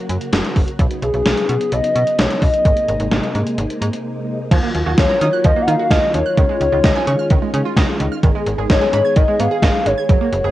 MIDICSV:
0, 0, Header, 1, 6, 480
1, 0, Start_track
1, 0, Tempo, 465116
1, 817, Time_signature, 4, 2, 24, 8
1, 10847, End_track
2, 0, Start_track
2, 0, Title_t, "Soft synth lead"
2, 0, Program_c, 0, 80
2, 1060, Note_on_c, 0, 68, 97
2, 1779, Note_on_c, 0, 75, 115
2, 1794, Note_off_c, 0, 68, 0
2, 2259, Note_on_c, 0, 73, 104
2, 2275, Note_off_c, 0, 75, 0
2, 2499, Note_on_c, 0, 75, 103
2, 2515, Note_off_c, 0, 73, 0
2, 3458, Note_off_c, 0, 75, 0
2, 5139, Note_on_c, 0, 73, 100
2, 5619, Note_on_c, 0, 75, 109
2, 5635, Note_off_c, 0, 73, 0
2, 5798, Note_on_c, 0, 78, 81
2, 5813, Note_off_c, 0, 75, 0
2, 5860, Note_on_c, 0, 77, 111
2, 5875, Note_off_c, 0, 78, 0
2, 6092, Note_off_c, 0, 77, 0
2, 6098, Note_on_c, 0, 75, 99
2, 6321, Note_off_c, 0, 75, 0
2, 6338, Note_on_c, 0, 73, 104
2, 8216, Note_off_c, 0, 73, 0
2, 8978, Note_on_c, 0, 73, 97
2, 9201, Note_off_c, 0, 73, 0
2, 9218, Note_on_c, 0, 73, 98
2, 9459, Note_on_c, 0, 75, 108
2, 9474, Note_off_c, 0, 73, 0
2, 9696, Note_on_c, 0, 77, 120
2, 9712, Note_off_c, 0, 75, 0
2, 10179, Note_on_c, 0, 73, 104
2, 10194, Note_off_c, 0, 77, 0
2, 10847, Note_off_c, 0, 73, 0
2, 10847, End_track
3, 0, Start_track
3, 0, Title_t, "Synth arpeggio sound"
3, 0, Program_c, 1, 84
3, 4658, Note_on_c, 1, 53, 95
3, 4729, Note_off_c, 1, 53, 0
3, 4777, Note_on_c, 1, 58, 81
3, 4849, Note_off_c, 1, 58, 0
3, 5017, Note_on_c, 1, 66, 79
3, 5089, Note_off_c, 1, 66, 0
3, 5136, Note_on_c, 1, 77, 99
3, 5209, Note_off_c, 1, 77, 0
3, 5257, Note_on_c, 1, 82, 84
3, 5329, Note_off_c, 1, 82, 0
3, 5377, Note_on_c, 1, 87, 91
3, 5449, Note_off_c, 1, 87, 0
3, 5498, Note_on_c, 1, 90, 93
3, 5570, Note_off_c, 1, 90, 0
3, 5618, Note_on_c, 1, 53, 92
3, 5690, Note_off_c, 1, 53, 0
3, 5738, Note_on_c, 1, 58, 77
3, 5810, Note_off_c, 1, 58, 0
3, 5857, Note_on_c, 1, 63, 87
3, 5929, Note_off_c, 1, 63, 0
3, 5978, Note_on_c, 1, 66, 82
3, 6049, Note_off_c, 1, 66, 0
3, 6097, Note_on_c, 1, 77, 95
3, 6169, Note_off_c, 1, 77, 0
3, 6457, Note_on_c, 1, 90, 91
3, 6529, Note_off_c, 1, 90, 0
3, 6577, Note_on_c, 1, 51, 95
3, 6649, Note_off_c, 1, 51, 0
3, 6697, Note_on_c, 1, 56, 80
3, 6769, Note_off_c, 1, 56, 0
3, 6938, Note_on_c, 1, 65, 80
3, 7010, Note_off_c, 1, 65, 0
3, 7058, Note_on_c, 1, 75, 95
3, 7130, Note_off_c, 1, 75, 0
3, 7179, Note_on_c, 1, 80, 84
3, 7250, Note_off_c, 1, 80, 0
3, 7298, Note_on_c, 1, 85, 93
3, 7370, Note_off_c, 1, 85, 0
3, 7419, Note_on_c, 1, 89, 91
3, 7491, Note_off_c, 1, 89, 0
3, 7539, Note_on_c, 1, 51, 93
3, 7610, Note_off_c, 1, 51, 0
3, 7659, Note_on_c, 1, 56, 79
3, 7730, Note_off_c, 1, 56, 0
3, 7778, Note_on_c, 1, 61, 86
3, 7850, Note_off_c, 1, 61, 0
3, 7899, Note_on_c, 1, 65, 83
3, 7970, Note_off_c, 1, 65, 0
3, 8019, Note_on_c, 1, 75, 92
3, 8091, Note_off_c, 1, 75, 0
3, 8378, Note_on_c, 1, 89, 92
3, 8450, Note_off_c, 1, 89, 0
3, 8499, Note_on_c, 1, 51, 95
3, 8570, Note_off_c, 1, 51, 0
3, 8619, Note_on_c, 1, 56, 81
3, 8690, Note_off_c, 1, 56, 0
3, 8859, Note_on_c, 1, 68, 79
3, 8930, Note_off_c, 1, 68, 0
3, 8978, Note_on_c, 1, 75, 97
3, 9050, Note_off_c, 1, 75, 0
3, 9096, Note_on_c, 1, 80, 88
3, 9168, Note_off_c, 1, 80, 0
3, 9218, Note_on_c, 1, 83, 98
3, 9290, Note_off_c, 1, 83, 0
3, 9337, Note_on_c, 1, 92, 89
3, 9409, Note_off_c, 1, 92, 0
3, 9457, Note_on_c, 1, 51, 92
3, 9529, Note_off_c, 1, 51, 0
3, 9577, Note_on_c, 1, 56, 78
3, 9649, Note_off_c, 1, 56, 0
3, 9697, Note_on_c, 1, 59, 85
3, 9769, Note_off_c, 1, 59, 0
3, 9818, Note_on_c, 1, 68, 84
3, 9889, Note_off_c, 1, 68, 0
3, 9937, Note_on_c, 1, 75, 94
3, 10009, Note_off_c, 1, 75, 0
3, 10298, Note_on_c, 1, 92, 92
3, 10369, Note_off_c, 1, 92, 0
3, 10417, Note_on_c, 1, 54, 93
3, 10489, Note_off_c, 1, 54, 0
3, 10538, Note_on_c, 1, 58, 77
3, 10610, Note_off_c, 1, 58, 0
3, 10777, Note_on_c, 1, 68, 83
3, 10847, Note_off_c, 1, 68, 0
3, 10847, End_track
4, 0, Start_track
4, 0, Title_t, "String machine"
4, 0, Program_c, 2, 50
4, 0, Note_on_c, 2, 49, 77
4, 0, Note_on_c, 2, 54, 69
4, 0, Note_on_c, 2, 58, 71
4, 0, Note_on_c, 2, 66, 83
4, 779, Note_off_c, 2, 66, 0
4, 797, Note_off_c, 2, 58, 0
4, 819, Note_on_c, 2, 63, 88
4, 820, Note_on_c, 2, 59, 72
4, 2697, Note_off_c, 2, 49, 0
4, 2697, Note_off_c, 2, 54, 0
4, 2719, Note_off_c, 2, 59, 0
4, 2739, Note_on_c, 2, 56, 73
4, 2740, Note_on_c, 2, 48, 78
4, 2740, Note_on_c, 2, 58, 71
4, 4620, Note_off_c, 2, 63, 0
4, 4639, Note_off_c, 2, 56, 0
4, 4639, Note_off_c, 2, 58, 0
4, 4640, Note_off_c, 2, 48, 0
4, 4657, Note_on_c, 2, 51, 80
4, 4657, Note_on_c, 2, 58, 74
4, 4657, Note_on_c, 2, 65, 85
4, 4658, Note_on_c, 2, 54, 71
4, 6558, Note_off_c, 2, 54, 0
4, 6558, Note_off_c, 2, 58, 0
4, 6578, Note_on_c, 2, 56, 73
4, 6579, Note_on_c, 2, 61, 73
4, 8459, Note_off_c, 2, 65, 0
4, 8479, Note_off_c, 2, 61, 0
4, 8497, Note_on_c, 2, 59, 71
4, 8497, Note_on_c, 2, 68, 86
4, 10376, Note_off_c, 2, 51, 0
4, 10398, Note_off_c, 2, 59, 0
4, 10398, Note_off_c, 2, 68, 0
4, 10416, Note_on_c, 2, 58, 72
4, 10417, Note_on_c, 2, 49, 80
4, 10417, Note_on_c, 2, 66, 88
4, 10847, Note_off_c, 2, 49, 0
4, 10847, Note_off_c, 2, 56, 0
4, 10847, Note_off_c, 2, 58, 0
4, 10847, Note_off_c, 2, 66, 0
4, 10847, End_track
5, 0, Start_track
5, 0, Title_t, "FM bass"
5, 0, Program_c, 3, 39
5, 96, Note_on_c, 3, 42, 99
5, 184, Note_off_c, 3, 42, 0
5, 337, Note_on_c, 3, 30, 103
5, 424, Note_off_c, 3, 30, 0
5, 579, Note_on_c, 3, 30, 103
5, 666, Note_off_c, 3, 30, 0
5, 818, Note_on_c, 3, 35, 115
5, 905, Note_off_c, 3, 35, 0
5, 1057, Note_on_c, 3, 35, 99
5, 1144, Note_off_c, 3, 35, 0
5, 1177, Note_on_c, 3, 35, 96
5, 1264, Note_off_c, 3, 35, 0
5, 1297, Note_on_c, 3, 35, 105
5, 1385, Note_off_c, 3, 35, 0
5, 1538, Note_on_c, 3, 47, 97
5, 1625, Note_off_c, 3, 47, 0
5, 1779, Note_on_c, 3, 35, 110
5, 1866, Note_off_c, 3, 35, 0
5, 2018, Note_on_c, 3, 47, 104
5, 2105, Note_off_c, 3, 47, 0
5, 2259, Note_on_c, 3, 35, 103
5, 2346, Note_off_c, 3, 35, 0
5, 2499, Note_on_c, 3, 35, 108
5, 2586, Note_off_c, 3, 35, 0
5, 2738, Note_on_c, 3, 32, 113
5, 2825, Note_off_c, 3, 32, 0
5, 2978, Note_on_c, 3, 32, 103
5, 3065, Note_off_c, 3, 32, 0
5, 3097, Note_on_c, 3, 32, 99
5, 3185, Note_off_c, 3, 32, 0
5, 3217, Note_on_c, 3, 32, 100
5, 3305, Note_off_c, 3, 32, 0
5, 3457, Note_on_c, 3, 44, 99
5, 3544, Note_off_c, 3, 44, 0
5, 3696, Note_on_c, 3, 32, 101
5, 3784, Note_off_c, 3, 32, 0
5, 3937, Note_on_c, 3, 44, 101
5, 4024, Note_off_c, 3, 44, 0
5, 4658, Note_on_c, 3, 39, 111
5, 4745, Note_off_c, 3, 39, 0
5, 4899, Note_on_c, 3, 39, 98
5, 4986, Note_off_c, 3, 39, 0
5, 5018, Note_on_c, 3, 39, 103
5, 5105, Note_off_c, 3, 39, 0
5, 5139, Note_on_c, 3, 39, 94
5, 5226, Note_off_c, 3, 39, 0
5, 5377, Note_on_c, 3, 51, 108
5, 5465, Note_off_c, 3, 51, 0
5, 5619, Note_on_c, 3, 39, 105
5, 5706, Note_off_c, 3, 39, 0
5, 5856, Note_on_c, 3, 51, 102
5, 5944, Note_off_c, 3, 51, 0
5, 6094, Note_on_c, 3, 39, 105
5, 6183, Note_off_c, 3, 39, 0
5, 6337, Note_on_c, 3, 39, 107
5, 6424, Note_off_c, 3, 39, 0
5, 6578, Note_on_c, 3, 37, 105
5, 6665, Note_off_c, 3, 37, 0
5, 6817, Note_on_c, 3, 37, 106
5, 6904, Note_off_c, 3, 37, 0
5, 6938, Note_on_c, 3, 37, 103
5, 7025, Note_off_c, 3, 37, 0
5, 7060, Note_on_c, 3, 37, 108
5, 7146, Note_off_c, 3, 37, 0
5, 7297, Note_on_c, 3, 49, 104
5, 7384, Note_off_c, 3, 49, 0
5, 7540, Note_on_c, 3, 37, 108
5, 7626, Note_off_c, 3, 37, 0
5, 7777, Note_on_c, 3, 49, 107
5, 7865, Note_off_c, 3, 49, 0
5, 8014, Note_on_c, 3, 37, 116
5, 8103, Note_off_c, 3, 37, 0
5, 8258, Note_on_c, 3, 37, 114
5, 8345, Note_off_c, 3, 37, 0
5, 8498, Note_on_c, 3, 32, 118
5, 8585, Note_off_c, 3, 32, 0
5, 8738, Note_on_c, 3, 32, 104
5, 8825, Note_off_c, 3, 32, 0
5, 8857, Note_on_c, 3, 32, 99
5, 8945, Note_off_c, 3, 32, 0
5, 8980, Note_on_c, 3, 32, 103
5, 9066, Note_off_c, 3, 32, 0
5, 9219, Note_on_c, 3, 44, 96
5, 9306, Note_off_c, 3, 44, 0
5, 9459, Note_on_c, 3, 32, 107
5, 9546, Note_off_c, 3, 32, 0
5, 9699, Note_on_c, 3, 44, 98
5, 9786, Note_off_c, 3, 44, 0
5, 9934, Note_on_c, 3, 32, 114
5, 10023, Note_off_c, 3, 32, 0
5, 10177, Note_on_c, 3, 32, 108
5, 10264, Note_off_c, 3, 32, 0
5, 10418, Note_on_c, 3, 30, 106
5, 10505, Note_off_c, 3, 30, 0
5, 10657, Note_on_c, 3, 30, 106
5, 10744, Note_off_c, 3, 30, 0
5, 10777, Note_on_c, 3, 30, 106
5, 10847, Note_off_c, 3, 30, 0
5, 10847, End_track
6, 0, Start_track
6, 0, Title_t, "Drums"
6, 97, Note_on_c, 9, 42, 81
6, 201, Note_off_c, 9, 42, 0
6, 217, Note_on_c, 9, 42, 51
6, 320, Note_off_c, 9, 42, 0
6, 336, Note_on_c, 9, 42, 68
6, 340, Note_on_c, 9, 38, 117
6, 440, Note_off_c, 9, 42, 0
6, 443, Note_off_c, 9, 38, 0
6, 460, Note_on_c, 9, 42, 51
6, 563, Note_off_c, 9, 42, 0
6, 577, Note_on_c, 9, 46, 73
6, 579, Note_on_c, 9, 36, 90
6, 680, Note_off_c, 9, 46, 0
6, 682, Note_off_c, 9, 36, 0
6, 699, Note_on_c, 9, 42, 48
6, 803, Note_off_c, 9, 42, 0
6, 817, Note_on_c, 9, 42, 70
6, 818, Note_on_c, 9, 36, 112
6, 921, Note_off_c, 9, 36, 0
6, 921, Note_off_c, 9, 42, 0
6, 937, Note_on_c, 9, 42, 53
6, 1040, Note_off_c, 9, 42, 0
6, 1057, Note_on_c, 9, 42, 57
6, 1161, Note_off_c, 9, 42, 0
6, 1176, Note_on_c, 9, 42, 51
6, 1279, Note_off_c, 9, 42, 0
6, 1298, Note_on_c, 9, 38, 113
6, 1298, Note_on_c, 9, 42, 70
6, 1401, Note_off_c, 9, 38, 0
6, 1401, Note_off_c, 9, 42, 0
6, 1420, Note_on_c, 9, 42, 59
6, 1523, Note_off_c, 9, 42, 0
6, 1540, Note_on_c, 9, 42, 77
6, 1643, Note_off_c, 9, 42, 0
6, 1661, Note_on_c, 9, 42, 54
6, 1764, Note_off_c, 9, 42, 0
6, 1776, Note_on_c, 9, 42, 76
6, 1879, Note_off_c, 9, 42, 0
6, 1900, Note_on_c, 9, 42, 54
6, 2003, Note_off_c, 9, 42, 0
6, 2021, Note_on_c, 9, 42, 80
6, 2124, Note_off_c, 9, 42, 0
6, 2138, Note_on_c, 9, 42, 51
6, 2242, Note_off_c, 9, 42, 0
6, 2258, Note_on_c, 9, 42, 67
6, 2262, Note_on_c, 9, 38, 117
6, 2361, Note_off_c, 9, 42, 0
6, 2365, Note_off_c, 9, 38, 0
6, 2381, Note_on_c, 9, 42, 50
6, 2484, Note_off_c, 9, 42, 0
6, 2498, Note_on_c, 9, 46, 73
6, 2499, Note_on_c, 9, 36, 90
6, 2601, Note_off_c, 9, 46, 0
6, 2602, Note_off_c, 9, 36, 0
6, 2619, Note_on_c, 9, 42, 50
6, 2722, Note_off_c, 9, 42, 0
6, 2738, Note_on_c, 9, 36, 114
6, 2738, Note_on_c, 9, 42, 70
6, 2841, Note_off_c, 9, 36, 0
6, 2841, Note_off_c, 9, 42, 0
6, 2857, Note_on_c, 9, 42, 53
6, 2960, Note_off_c, 9, 42, 0
6, 2977, Note_on_c, 9, 42, 59
6, 3081, Note_off_c, 9, 42, 0
6, 3095, Note_on_c, 9, 42, 51
6, 3198, Note_off_c, 9, 42, 0
6, 3216, Note_on_c, 9, 38, 115
6, 3216, Note_on_c, 9, 42, 70
6, 3319, Note_off_c, 9, 38, 0
6, 3319, Note_off_c, 9, 42, 0
6, 3339, Note_on_c, 9, 42, 58
6, 3443, Note_off_c, 9, 42, 0
6, 3459, Note_on_c, 9, 42, 81
6, 3562, Note_off_c, 9, 42, 0
6, 3579, Note_on_c, 9, 42, 55
6, 3682, Note_off_c, 9, 42, 0
6, 3697, Note_on_c, 9, 42, 76
6, 3800, Note_off_c, 9, 42, 0
6, 3821, Note_on_c, 9, 42, 54
6, 3924, Note_off_c, 9, 42, 0
6, 3941, Note_on_c, 9, 42, 86
6, 4044, Note_off_c, 9, 42, 0
6, 4058, Note_on_c, 9, 42, 53
6, 4162, Note_off_c, 9, 42, 0
6, 4658, Note_on_c, 9, 36, 111
6, 4659, Note_on_c, 9, 42, 69
6, 4659, Note_on_c, 9, 49, 102
6, 4761, Note_off_c, 9, 36, 0
6, 4762, Note_off_c, 9, 42, 0
6, 4762, Note_off_c, 9, 49, 0
6, 4898, Note_on_c, 9, 42, 59
6, 5001, Note_off_c, 9, 42, 0
6, 5136, Note_on_c, 9, 38, 113
6, 5137, Note_on_c, 9, 42, 73
6, 5140, Note_on_c, 9, 36, 105
6, 5240, Note_off_c, 9, 38, 0
6, 5240, Note_off_c, 9, 42, 0
6, 5243, Note_off_c, 9, 36, 0
6, 5378, Note_on_c, 9, 42, 82
6, 5481, Note_off_c, 9, 42, 0
6, 5615, Note_on_c, 9, 42, 80
6, 5619, Note_on_c, 9, 36, 117
6, 5718, Note_off_c, 9, 42, 0
6, 5722, Note_off_c, 9, 36, 0
6, 5860, Note_on_c, 9, 42, 86
6, 5963, Note_off_c, 9, 42, 0
6, 6094, Note_on_c, 9, 36, 121
6, 6097, Note_on_c, 9, 42, 69
6, 6101, Note_on_c, 9, 38, 116
6, 6198, Note_off_c, 9, 36, 0
6, 6201, Note_off_c, 9, 42, 0
6, 6204, Note_off_c, 9, 38, 0
6, 6338, Note_on_c, 9, 42, 79
6, 6441, Note_off_c, 9, 42, 0
6, 6577, Note_on_c, 9, 42, 71
6, 6578, Note_on_c, 9, 36, 117
6, 6680, Note_off_c, 9, 42, 0
6, 6681, Note_off_c, 9, 36, 0
6, 6818, Note_on_c, 9, 42, 59
6, 6921, Note_off_c, 9, 42, 0
6, 7057, Note_on_c, 9, 38, 116
6, 7057, Note_on_c, 9, 42, 72
6, 7060, Note_on_c, 9, 36, 109
6, 7160, Note_off_c, 9, 38, 0
6, 7160, Note_off_c, 9, 42, 0
6, 7163, Note_off_c, 9, 36, 0
6, 7298, Note_on_c, 9, 42, 81
6, 7401, Note_off_c, 9, 42, 0
6, 7535, Note_on_c, 9, 42, 79
6, 7539, Note_on_c, 9, 36, 120
6, 7638, Note_off_c, 9, 42, 0
6, 7643, Note_off_c, 9, 36, 0
6, 7778, Note_on_c, 9, 42, 86
6, 7882, Note_off_c, 9, 42, 0
6, 8014, Note_on_c, 9, 36, 114
6, 8017, Note_on_c, 9, 42, 73
6, 8020, Note_on_c, 9, 38, 119
6, 8118, Note_off_c, 9, 36, 0
6, 8120, Note_off_c, 9, 42, 0
6, 8124, Note_off_c, 9, 38, 0
6, 8258, Note_on_c, 9, 42, 78
6, 8361, Note_off_c, 9, 42, 0
6, 8497, Note_on_c, 9, 42, 74
6, 8498, Note_on_c, 9, 36, 119
6, 8600, Note_off_c, 9, 42, 0
6, 8601, Note_off_c, 9, 36, 0
6, 8737, Note_on_c, 9, 42, 59
6, 8840, Note_off_c, 9, 42, 0
6, 8977, Note_on_c, 9, 38, 118
6, 8977, Note_on_c, 9, 42, 71
6, 8980, Note_on_c, 9, 36, 104
6, 9080, Note_off_c, 9, 38, 0
6, 9080, Note_off_c, 9, 42, 0
6, 9083, Note_off_c, 9, 36, 0
6, 9217, Note_on_c, 9, 42, 82
6, 9320, Note_off_c, 9, 42, 0
6, 9454, Note_on_c, 9, 42, 80
6, 9459, Note_on_c, 9, 36, 119
6, 9558, Note_off_c, 9, 42, 0
6, 9562, Note_off_c, 9, 36, 0
6, 9699, Note_on_c, 9, 42, 86
6, 9802, Note_off_c, 9, 42, 0
6, 9934, Note_on_c, 9, 36, 117
6, 9936, Note_on_c, 9, 42, 70
6, 9940, Note_on_c, 9, 38, 120
6, 10037, Note_off_c, 9, 36, 0
6, 10040, Note_off_c, 9, 42, 0
6, 10043, Note_off_c, 9, 38, 0
6, 10179, Note_on_c, 9, 42, 78
6, 10282, Note_off_c, 9, 42, 0
6, 10418, Note_on_c, 9, 36, 114
6, 10418, Note_on_c, 9, 42, 70
6, 10521, Note_off_c, 9, 36, 0
6, 10521, Note_off_c, 9, 42, 0
6, 10658, Note_on_c, 9, 42, 60
6, 10761, Note_off_c, 9, 42, 0
6, 10847, End_track
0, 0, End_of_file